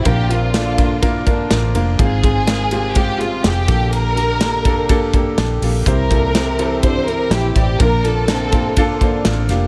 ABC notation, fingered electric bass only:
X:1
M:4/4
L:1/8
Q:"Swing 16ths" 1/4=124
K:Bblyd
V:1 name="Fingered electric bass" clef=bass
B,,,6 A,,, F,,, | _A,,,6 F,,, B,,,- | B,,,6 B,,, B,,, | C,,6 B,,, A,,, |
B,,,6 A,,, F,,, |]